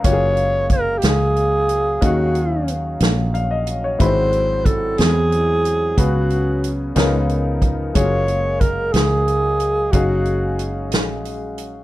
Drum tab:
HH |xxxxxx|xxxxxx|xxxxxx|xxxxxx|
SD |---o--|---o--|---o--|---o--|
BD |o-o---|o-----|o-o---|o----o|

HH |xxxxxx|xxxxxx|
SD |---o--|---o--|
BD |o-o---|o-----|